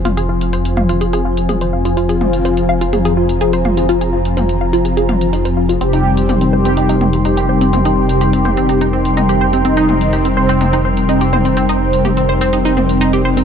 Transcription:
<<
  \new Staff \with { instrumentName = "Ambient pad" } { \time 4/4 \key f \minor \tempo 4 = 125 << { c'''1 | bes''1~ | bes''1 | c'''1~ |
c'''1~ | c'''1~ | c'''1 | } \\ { <f' c'' aes''>1~ | <f' c'' aes''>1~ | <f' c'' aes''>1 | <ees' bes' g''>1~ |
<ees' bes' g''>1~ | <ees' bes' g''>1~ | <ees' bes' g''>1 | } >> }
  \new Staff \with { instrumentName = "Analog polysynth" } { \time 4/4 \key f \minor r1 | r1 | r1 | g'4. g'4. g'4~ |
g'1 | ees'4. c'4. c'4~ | c'1 | }
  \new Staff \with { instrumentName = "Synth arpeggio sound" } { \time 4/4 \key f \minor f'16 aes'16 f'16 r16 c''16 r16 f''16 f'16 aes'16 aes'16 f'16 r16 aes'16 c''16 f''16 f'16 | f'16 aes'16 f'16 r16 c''16 r16 f''16 f'16 aes'16 aes'16 f'16 r16 aes'16 c''16 f''16 f'16 | f'16 aes'16 f'16 r16 c''16 r16 f''16 f'16 aes'16 aes'16 f''16 r16 ees'16 c''16 f'16 f'16 | c'16 ees'16 r8 g'16 c'16 c''16 c'16 ees'16 ees'16 c'16 r16 ees'16 g'16 c''16 c'16 |
c'16 ees'16 r8 g'16 c'16 c''16 c'16 ees'16 ees'16 c'16 r16 ees'16 g'16 c''16 c'16 | c'16 ees'16 r8 g'16 c'16 c''16 c'16 ees'16 ees'16 c'16 r16 ees'16 g'16 c''16 c'16 | c'16 ees'16 r8 g'16 c'16 c''16 c'16 ees'16 ees'16 c'16 r16 ees'16 g'16 c''16 c'16 | }
  \new Staff \with { instrumentName = "Analog synth pad" } { \time 4/4 \key f \minor <f c' f'>1 | <f c' f'>1~ | <f c' f'>1 | <c g c'>1~ |
<c g c'>1 | <c g c'>1~ | <c g c'>1 | }
  \new Staff \with { instrumentName = "Detuned saw bass" } { \clef bass \time 4/4 \key f \minor f,,1~ | f,,1~ | f,,1 | f,,1~ |
f,,1~ | f,,1~ | f,,1 | }
  \new DrumStaff \with { instrumentName = "Drums" } \drummode { \time 4/4 <hh toml>16 hh8 hh16 hh16 hh16 toml16 hh16 hh16 hh8 hh16 <hh toml>16 hh8 hh16 | hh16 hh16 toml16 hh16 hh16 hh8 hh16 <hh toml>16 hh8 hh16 hh16 hh16 toml16 hh16 | hh16 hh8 hh16 <hh toml>16 hh8 hh16 hh16 hh16 toml16 hh16 hh16 hh8 hh16 | hh16 hh8 hh16 <hh toml>16 hh8 hh16 hh16 hh16 toml16 hh16 hh16 hh8 hh16 |
<hh toml>16 hh8 hh16 hh16 hh16 toml16 hh16 hh16 hh8 hh16 <hh toml>16 hh8 hh16 | hh16 hh16 toml16 hh16 hh16 hh8 hh16 <hh toml>16 hh8 hh16 hh16 hh16 toml16 hh16 | hh16 hh8 hh16 <hh toml>16 hh8 hh16 hh16 hh16 toml16 hh16 hh16 hh8 hh16 | }
>>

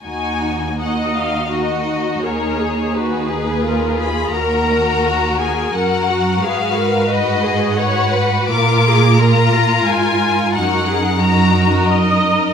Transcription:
<<
  \new Staff \with { instrumentName = "Violin section" } { \time 3/4 \key ees \minor \tempo 4 = 87 aes''4 ges''8 f''8 ees''4 | des''4 ces''4. ces'''8 | bes''4. aes''8 ges''4 | f''4 ees''4 ges''4 |
d'''4 bes''4 aes''4 | ges''4 bes''4 r4 | }
  \new Staff \with { instrumentName = "Viola section" } { \time 3/4 \key ees \minor r4 ees''4 ges'4 | bes'8 aes'8 ges'8 aes'8 bes'8 aes'8 | bes'4 ges'8 aes'8 bes'8 ges'8 | aes'8 bes'8 ces''8 aes'8 des''8 ces''8 |
bes'8 aes'8 bes'8 f'4. | ges'8 aes'8 ges'4 ees''4 | }
  \new Staff \with { instrumentName = "Violin section" } { \time 3/4 \key ees \minor << { ges'4 ges'4 ges'4 | aes'4 aes'2 | bes'2 bes'4 | ces''4 ces''4 ces''4 |
bes'4 bes'2 | bes'4 bes'2 | } \\ { ees'4 ees'4 ees'4 | ees'4 ees'4 f'4 | ges'2 ges'4 | ges'4 ges'4 ges'4 |
f'4 f'2 | ees'4 ees'2 | } >> }
  \new Staff \with { instrumentName = "Cello section" } { \clef bass \time 3/4 \key ees \minor ees,2. | ees,2. | ees,2 ges,4 | aes,2. |
bes,2 aes,4 | ges,2. | }
>>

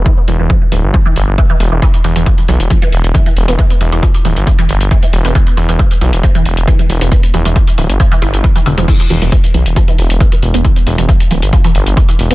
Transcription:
<<
  \new Staff \with { instrumentName = "Synth arpeggio sound" } { \clef bass \time 4/4 \key e \phrygian \tempo 4 = 136 e16 r16 e16 e16 f16 r16 e16 r16 f16 e16 r8 e16 e16 r16 e16 | e16 r16 e16 e16 f16 r16 e16 r16 f16 e16 r8 e16 e16 r16 b16 | e16 r16 e16 e16 f16 r16 e16 r16 f16 e16 r8 e16 e16 r16 b16 | e16 r16 e16 e16 f16 r16 e16 r16 f16 e16 r8 e16 e16 r16 b16 |
e16 r16 e16 e16 f16 r16 e16 r16 f16 e16 e'16 r16 e16 e16 d16 f16 | e16 r16 e16 e16 f16 r16 e16 r16 f16 e16 r8 e16 e16 r16 b16 | e16 r16 e16 e16 f16 r16 e16 r16 f16 e16 r8 e16 e16 r16 b16 | }
  \new Staff \with { instrumentName = "Detuned saw bass" } { \clef bass \time 4/4 \key e \phrygian r8 e,,16 e,,16 r8 d,,16 g,,16 r8 g,,16 g,,16 r8 e,,16 e,,16 | r8 e,,16 e,,16 r8 b,,16 e,,16 r8 e,,16 e,,16 r8 e,,16 e,,16 | r8 e,,16 e,,16 r8 d,,16 g,,16 r8 g,,16 g,,16 r8 e,,16 e,,16 | r8 e,,16 e,,16 r8 b,,16 e,,16 r8 e,,16 e,,16 r8 e,,16 e,,16 |
r8 e,,16 e,,16 r8 d,,16 g,,16 r8 g,,16 g,,16 r8 e,,16 e,,16 | r8 e,,16 e,,16 r8 b,,16 e,,16 r8 e,,16 e,,16 r8 e,,16 e,,16 | r8 e,,16 e,,16 r8 d,,16 g,,16 r8 g,,16 g,,16 r8 e,,16 e,,16 | }
  \new DrumStaff \with { instrumentName = "Drums" } \drummode { \time 4/4 bd8 hho8 bd8 hho8 bd8 hho8 bd8 hho8 | <hh bd>16 hh16 hho16 hh16 <hh bd>16 hh16 hho16 hh16 <hh bd>16 hh16 hho16 hh16 <hh bd>16 hh16 hho16 hh16 | <hh bd>16 hh16 hho16 hh16 <hh bd>16 hh16 hho16 hh16 <hh bd>16 hh16 hho16 hh16 <hh bd>16 hh16 hho16 hh16 | <hh bd>16 hh16 hho16 hh16 <hh bd>16 hh16 hho16 hh16 <hh bd>16 hh16 hho16 hh16 <hh bd>16 hh16 hho16 hh16 |
<hh bd>16 hh16 hho16 hh16 <hh bd>16 hh16 hho16 hh16 <hh bd>16 hh16 hho16 hh16 <hh bd>16 hh16 hho16 hh16 | <cymc hh bd>16 hh16 hho16 hh16 <hh bd>16 hh16 hho16 hh16 <hh bd>16 hh16 hho16 hh16 <hh bd>16 hh16 hho16 hh16 | <hh bd>16 hh16 hho16 hh16 <hh bd>16 hh16 hho16 hh16 <hh bd>16 hh16 hho16 hh16 <hh bd>16 hh16 hho16 hh16 | }
>>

